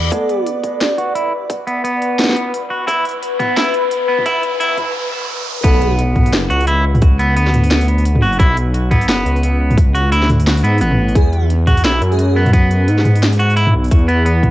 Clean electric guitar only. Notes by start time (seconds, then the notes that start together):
0.12 B3
0.98 F#4
1.15 E4
1.67 B3
1.84 B3
2.70 F#4
2.87 E4
3.39 B3
3.56 E4
4.08 B3
4.26 E4
4.60 E4
5.64 B3
6.50 F#4
6.67 E4
7.19 B3
7.36 B3
8.22 F#4
8.39 E4
8.91 B3
9.08 B3
9.95 F#4
10.12 E4
10.64 B3
10.81 B3
11.67 F#4
11.85 E4
12.36 B3
12.53 B3
13.39 F#4
13.56 E4
14.08 B3
14.26 B3